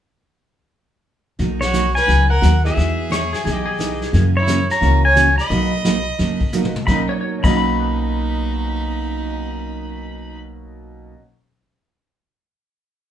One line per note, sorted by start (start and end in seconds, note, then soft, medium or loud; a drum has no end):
1.39 1.94 B1 medium
1.39 1.60 B2 medium
1.39 1.61 F#3 medium
1.39 1.61 A#3 medium
1.39 1.61 D#4 medium
1.39 1.61 F#4 medium
1.39 brush sweep soft
1.39 snare soft
1.61 1.94 F#4 medium
1.61 1.96 C#5 medium
1.61 snare medium
1.72 1.84 B2 medium
1.72 1.85 F#3 medium
1.72 1.85 A#3 medium
1.72 1.85 D#4 medium
1.72 1.85 F#4 medium
1.72 snare medium
1.72 hi-hat pedal medium
1.95 2.28 B4 medium
1.95 2.30 G#5 loud
1.95 snare soft
2.07 2.37 C#2 medium
2.07 2.29 B2 medium
2.07 2.29 F#3 medium
2.07 2.29 A#3 medium
2.07 2.29 D#4 medium
2.07 2.29 F#4 medium
2.07 brush sweep soft
2.07 snare soft
2.30 2.62 A#4 medium
2.30 2.62 F#5 medium
2.41 2.71 D#2 medium
2.41 2.53 B2 medium
2.41 2.53 F#3 medium
2.41 2.53 A#3 medium
2.41 2.53 D#4 medium
2.41 2.54 F#4 medium
2.41 snare medium
2.41 hi-hat pedal soft
2.63 3.08 B3 medium
2.63 3.09 E4 medium
2.63 3.09 F#4 medium
2.63 3.09 G#4 medium
2.63 3.51 G#4 medium
2.63 3.52 E5 medium
2.63 snare soft
2.76 3.32 E2 medium
2.76 2.98 E3 medium
2.76 2.98 B3 medium
2.76 2.98 D#4 medium
2.76 2.98 G#4 medium
2.76 brush sweep soft
2.76 snare soft
3.09 3.22 E3 medium
3.09 3.22 B3 medium
3.09 3.22 D#4 medium
3.09 3.22 G#4 medium
3.09 3.33 C#5 medium
3.09 snare medium
3.09 hi-hat pedal medium
3.33 3.44 G#4 medium
3.33 snare soft
3.44 4.01 B1 medium
3.44 3.66 E3 medium
3.44 3.66 B3 medium
3.44 3.66 D#4 medium
3.44 3.64 G#4 medium
3.44 3.67 G#4 medium
3.44 brush sweep medium
3.44 snare soft
3.51 3.98 G4 medium
3.51 3.98 D#5 medium
3.66 4.22 G#4 medium
3.78 3.90 E3 medium
3.78 3.90 B3 medium
3.78 4.14 B3 medium
3.78 3.91 D#4 medium
3.78 4.14 D#4 soft
3.78 4.14 E4 soft
3.78 3.91 G#4 medium
3.78 4.14 G#4 medium
3.78 snare medium
3.78 hi-hat pedal medium
4.02 snare soft
4.13 4.68 F#2 medium
4.13 4.35 C#3 medium
4.13 4.35 E3 medium
4.13 4.35 A#3 medium
4.13 4.35 C#4 medium
4.13 4.35 F#4 medium
4.13 brush sweep soft
4.13 snare soft
4.37 4.69 E4 medium
4.37 4.71 C#5 medium
4.47 4.59 C#3 medium
4.47 4.59 E3 medium
4.47 4.59 A#3 medium
4.47 4.59 C#4 medium
4.47 4.59 F#4 medium
4.47 snare medium
4.47 hi-hat pedal medium
4.70 5.02 C#5 medium
4.70 5.05 A#5 loud
4.70 snare soft
4.80 5.37 C#2 medium
4.80 5.03 C#3 medium
4.80 5.03 E3 medium
4.80 5.03 A#3 medium
4.80 5.02 A#3 medium
4.80 5.03 C#4 medium
4.80 5.02 C#4 medium
4.80 5.02 E4 medium
4.80 5.03 F#4 medium
4.80 5.02 F#4 medium
4.80 brush sweep soft
4.80 snare soft
5.05 5.36 C#5 medium
5.05 5.36 G#5 loud
5.15 5.27 C#3 medium
5.15 5.27 E3 medium
5.15 5.27 A#3 medium
5.15 5.28 C#4 medium
5.15 5.28 F#4 medium
5.15 snare medium
5.15 hi-hat pedal soft
5.38 6.72 D#5 medium
5.38 6.71 B5 medium
5.38 snare soft
5.50 6.05 B1 medium
5.50 5.72 B2 medium
5.50 5.72 F#3 medium
5.50 5.70 A#3 medium
5.50 5.72 A#3 medium
5.50 5.71 B3 medium
5.50 5.73 D#4 medium
5.50 5.71 D#4 medium
5.50 5.73 F#4 medium
5.50 5.71 F#4 medium
5.50 brush sweep medium
5.50 snare soft
5.84 5.96 B2 medium
5.84 5.96 F#3 medium
5.84 5.96 A#3 medium
5.84 5.96 D#4 medium
5.84 5.97 F#4 medium
5.84 snare medium
5.84 hi-hat pedal medium
6.18 6.74 F#1 medium
6.18 6.40 B2 medium
6.18 6.41 F#3 medium
6.18 6.41 A#3 medium
6.18 6.41 D#4 medium
6.18 6.41 F#4 medium
6.18 brush sweep soft
6.18 snare soft
6.41 kick medium
6.53 6.65 B2 medium
6.53 6.65 F#3 medium
6.53 6.73 A#3 medium
6.53 6.65 A#3 medium
6.53 6.73 B3 medium
6.53 6.73 D#4 medium
6.53 6.65 D#4 medium
6.53 6.65 F#4 medium
6.53 6.74 F#4 medium
6.53 hi-hat pedal medium
6.53 high tom soft
6.65 mid tom medium
6.76 mid tom medium
6.82 6.98 B2 medium
6.82 7.00 F#3 medium
6.87 7.00 B1 medium
6.87 7.43 B2 medium
6.87 7.44 F#3 medium
6.87 7.01 A#3 medium
6.87 7.45 A#3 medium
6.87 7.00 D#4 medium
6.87 7.46 D#4 medium
6.87 7.46 F#4 medium
6.87 7.00 B5 medium
6.87 kick medium
6.87 snare medium
6.91 7.03 C#4 medium
6.91 7.04 D#4 medium
7.09 7.20 C#5 medium
7.21 11.09 F#4 soft
7.21 7.43 C#5 medium
7.30 11.13 A#4 soft
7.38 11.11 B2 medium
7.38 11.12 F#3 medium
7.38 11.17 C#5 soft
7.43 11.09 B1 medium
7.43 11.13 B2 medium
7.43 11.13 F#3 medium
7.43 11.13 A#3 medium
7.43 11.14 A#3 medium
7.43 10.39 D#4 medium
7.43 11.14 D#4 medium
7.43 11.15 F#4 medium
7.43 7.57 D#5 medium
7.43 10.39 B5 medium
7.43 kick medium
7.43 crash medium
7.48 11.15 C#4 medium
7.48 11.16 D#4 medium
7.48 11.22 F#5 soft
7.57 11.27 A#5 soft
7.57 10.39 B5 medium
7.69 11.32 C#6 soft
7.80 11.38 F#6 soft